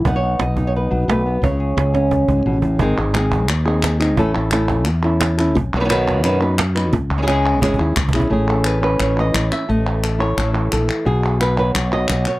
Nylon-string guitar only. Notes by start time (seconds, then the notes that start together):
0.06 B3 D#4 F#5
0.16 C#5
0.23 D#4
0.42 D#5
0.58 D#4
0.67 C#5
0.76 B4
0.91 F#3
1.08 A3 B4
1.26 B3
1.43 C#3 C#5
1.60 G#4
1.78 G#4
1.94 C#4
2.29 G#2
2.46 B2
2.62 A2
2.80 D#3 G#3 C4 D#4 G#4
2.98 C4 D#4 G#4
3.14 G#3 C4 D#4 G#4
3.49 muted nylon-string guitar stroke
3.66 C4 D#4 G#4
4.00 C4 D#4 G#4
4.17 E3 A3 C#4 E4 A4
4.34 C#4 E4 A4
4.51 A3 C#4 E4 A4
4.86 muted nylon-string guitar stroke
5.03 C#4 E4 A4
5.38 C#4 E4 A4
5.55 muted nylon-string guitar stroke
5.75 D#3 F#3 B3 D#4 B4
5.80 D#3 F#3 B3 D#4 B4
5.84 D#3 F#3 B3 D#4 B4
5.89 B2 D#3 F#3 B3 D#4 B4
6.23 B2 D#3 F#3 B3 D#4 B4
6.41 F#3 B3 D#4 B4
6.58 muted nylon-string guitar stroke
6.75 F#3 B3 D#4 B4
6.93 muted nylon-string guitar stroke
7.18 G#3 C#4 E4 G#4
7.22 G#3 C#4 E4 G#4
7.27 C#3 G#3 C#4 E4 G#4
7.61 C#3 G#3 C#4 E4 G#4
7.78 C#4 E4 G#4
7.96 muted nylon-string guitar stroke
8.14 C#4 E4 G#4
8.30 A3 C#4 E4 G#4
8.49 A4
8.65 B4
8.81 C#4 B4
9.01 C#5
9.16 E3 D#5
9.34 E4
9.52 E5
9.69 A3 D#5
10.04 A4
10.19 E4 C#5
10.38 A4
10.53 E3
10.73 A4
11.05 B2 G#4
11.24 A4
11.41 B4
11.57 F#3 B4
11.75 C#5
11.92 F#3 D#5
12.09 D#5
12.27 C#5